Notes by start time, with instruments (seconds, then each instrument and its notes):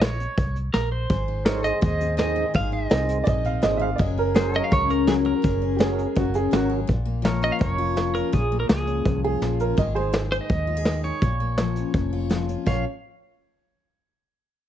Already playing: fingered electric bass A#1
0.01 pedal steel guitar C#5, snare, closed hi-hat
0.20 closed hi-hat
0.38 fingered electric bass C2, kick, closed hi-hat
0.56 closed hi-hat
0.74 fingered electric bass A#1, pedal steel guitar A#4, snare, closed hi-hat
0.92 pedal steel guitar C5
1.10 fingered electric bass G#1, steel-string acoustic guitar G#2 G#4, kick, closed hi-hat
1.28 steel-string acoustic guitar D#4
1.45 steel-string acoustic guitar D#3 C4, tonewheel organ D#4 G#4 C5, pedal steel guitar A#4 C#5, snare, closed hi-hat
1.64 pedal steel guitar C5 D#5, closed hi-hat
1.70 pedal steel guitar G#4
1.81 fingered electric bass D#2, steel-string acoustic guitar G#2 D#4, pedal steel guitar D#5, kick, closed hi-hat
2.01 steel-string acoustic guitar C4, closed hi-hat
2.17 steel-string acoustic guitar D#3 G#4, tonewheel organ D#4 G#4 C5, pedal steel guitar D#5, snare, closed hi-hat
2.36 steel-string acoustic guitar C4
2.54 fingered electric bass G#1, steel-string acoustic guitar G#2 G#4, pedal steel guitar F5, kick, closed hi-hat
2.72 steel-string acoustic guitar D#4, pedal steel guitar D#5
2.90 fingered electric bass C2, steel-string acoustic guitar D#3 C4, tonewheel organ D#4 G#4 C5, snare, closed hi-hat
3.09 closed hi-hat
3.24 fingered electric bass A#1, steel-string acoustic guitar G#2 D#4, upright piano D5, kick, closed hi-hat
3.28 upright piano D#5
3.45 steel-string acoustic guitar C4, upright piano F5, closed hi-hat
3.62 fingered electric bass G#1, steel-string acoustic guitar A#2, tonewheel organ D#4 G#4 C5, upright piano D#5, snare, closed hi-hat
3.77 steel-string acoustic guitar G#2, upright piano E5
3.82 upright piano F5
3.96 fingered electric bass F#1, steel-string acoustic guitar F#2 F#3, upright piano D5 D#5, kick, closed hi-hat
4.00 steel-string acoustic guitar G#3 C#4 G#4
4.18 steel-string acoustic guitar C#4, upright piano A#4
4.34 steel-string acoustic guitar F#3 G#3, tonewheel organ C#4 F#4 A#4, pedal steel guitar G#4 C5, snare, closed hi-hat
4.54 pedal steel guitar C#5 D#5, closed hi-hat
4.60 pedal steel guitar A#4 F5
4.71 fingered electric bass C#2, steel-string acoustic guitar C#3 C#4, pedal steel guitar C#5, kick, closed hi-hat
4.90 steel-string acoustic guitar G#3, pedal steel guitar A#4, closed hi-hat
5.07 steel-string acoustic guitar F#3 C#4, tonewheel organ C#4 F#4 A#4, pedal steel guitar G#4, snare, closed hi-hat
5.25 steel-string acoustic guitar G#3, pedal steel guitar A#4
5.42 fingered electric bass F#1, steel-string acoustic guitar F#2 G#4, kick, closed hi-hat
5.62 steel-string acoustic guitar C#4
5.76 steel-string acoustic guitar F#3 G#3, upright piano G4, snare, closed hi-hat
5.80 tonewheel organ C#4 F#4 A#4, upright piano G#4
5.99 closed hi-hat
6.15 fingered electric bass F#1, steel-string acoustic guitar C#3 C#4, upright piano F#4, kick, closed hi-hat
6.34 steel-string acoustic guitar G#3, upright piano G#4, closed hi-hat
6.51 fingered electric bass G#1, steel-string acoustic guitar F#3 G#4, tonewheel organ C#4 F#4 A#4, upright piano F#4, snare, closed hi-hat
6.70 steel-string acoustic guitar G#3
6.87 fingered electric bass A#1, steel-string acoustic guitar A#2, kick, closed hi-hat
7.05 steel-string acoustic guitar A#3
7.22 steel-string acoustic guitar F3, pedal steel guitar A#4 C#5, snare, closed hi-hat
7.42 steel-string acoustic guitar C#4, pedal steel guitar D#5, closed hi-hat
7.52 pedal steel guitar F5
7.59 fingered electric bass F1, steel-string acoustic guitar F2, pedal steel guitar C#5, kick, closed hi-hat
7.78 steel-string acoustic guitar F4
7.96 steel-string acoustic guitar F3, snare, closed hi-hat
8.15 steel-string acoustic guitar C#4, pedal steel guitar A#4, closed hi-hat
8.32 fingered electric bass A#1, steel-string acoustic guitar A#2, pedal steel guitar G#4, kick, closed hi-hat
8.52 steel-string acoustic guitar A#3
8.60 pedal steel guitar A#4
8.69 fingered electric bass C#2, steel-string acoustic guitar F3, pedal steel guitar G#4, snare, closed hi-hat
8.87 steel-string acoustic guitar C#4, closed hi-hat
9.05 fingered electric bass C2, steel-string acoustic guitar F2, kick, closed hi-hat
9.24 steel-string acoustic guitar F4, upright piano G#4
9.41 fingered electric bass A#1, steel-string acoustic guitar F3, snare, closed hi-hat
9.60 steel-string acoustic guitar C#4, upright piano A#4, closed hi-hat
9.77 fingered electric bass G#1, steel-string acoustic guitar G#2 D#3 G#3 D#4 G#4, upright piano D#5, kick, closed hi-hat
9.95 steel-string acoustic guitar G#3, upright piano G#4 C5
10.13 steel-string acoustic guitar D#3, snare, closed hi-hat
10.31 steel-string acoustic guitar D#4, pedal steel guitar C5, closed hi-hat
10.41 pedal steel guitar D#5
10.49 fingered electric bass D#2, kick, closed hi-hat
10.67 steel-string acoustic guitar F4
10.77 steel-string acoustic guitar G#4
10.85 steel-string acoustic guitar D#3, snare, closed hi-hat
11.04 steel-string acoustic guitar D#4, pedal steel guitar C#5, closed hi-hat
11.22 fingered electric bass A#1, steel-string acoustic guitar A#2, kick, closed hi-hat
11.40 steel-string acoustic guitar A#3
11.58 steel-string acoustic guitar F3, snare, closed hi-hat
11.76 steel-string acoustic guitar C#4, closed hi-hat
11.94 fingered electric bass F1, steel-string acoustic guitar F2, kick, closed hi-hat
12.13 steel-string acoustic guitar F4
12.29 steel-string acoustic guitar F3, snare, closed hi-hat
12.49 steel-string acoustic guitar C#4, closed hi-hat
12.66 fingered electric bass A#1, steel-string acoustic guitar A#2 F3 A#3 C#4 F4, upright piano C#5, pedal steel guitar F5, kick, crash